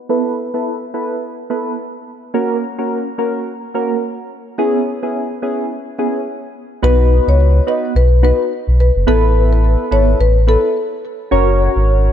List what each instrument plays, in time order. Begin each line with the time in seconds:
0.09 synth keys B3 E4 A4 B4
0.54 synth keys B3 E4 A4 B4
0.94 synth keys B3 E4 A4 B4
1.50 synth keys B3 E4 A4 B4
2.34 synth keys A#3 C#4 F#4 A#4
2.78 synth keys A#3 C#4 F#4 A#4
3.18 synth keys A#3 C#4 F#4 A#4
3.74 synth keys A#3 C#4 F#4 A#4
4.58 synth keys B3 C#4 E4 G#4
5.03 synth keys B3 C#4 E4 G#4
5.42 synth keys B3 C#4 E4 G#4
5.98 synth keys B3 C#4 E4 G#4
6.82 sub bass B1, synth keys B3 D#4 F#4 B4, marimba B4
7.27 sub bass C#2, marimba C#5
7.67 synth keys B3 D#4 F#4 B4, marimba D#5
7.95 sub bass B1, marimba B4
8.23 synth keys B3 D#4 F#4 B4, marimba B4
8.67 sub bass B1
8.80 marimba B4
8.96 sub bass F#1
9.07 sub bass A1, synth keys B3 E4 A4 B4, marimba A4
9.53 marimba B4
9.91 sub bass G#1, synth keys B3 E4 A4 B4, marimba C#5
10.20 sub bass A1, marimba B4
10.47 synth keys B3 E4 A4 B4, marimba A4
11.31 sub bass F#1, synth keys C#4 F#4 A#4 C#5
11.76 sub bass G#1